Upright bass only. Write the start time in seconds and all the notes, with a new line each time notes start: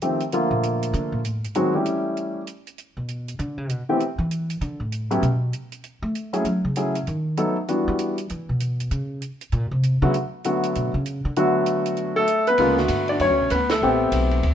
0.51 A#2
0.93 D3
1.12 A#2
1.25 A2
2.97 B2
3.39 D3
3.58 C#3
3.70 B2
4.18 E3
4.61 D3
4.80 A2
5.22 B2
6.02 A3
6.45 F#3
6.65 C#3
7.08 D#3
7.88 G3
8.30 E3
8.49 B2
8.91 C#3
9.52 A#2
9.71 C3
10.02 C#3
10.76 B2
10.94 C#3
11.25 D3
12.58 D2
12.89 G2
13.20 F#2
13.30 D2
13.40 B1
13.51 D2
13.82 A1
14.12 B1
14.43 D2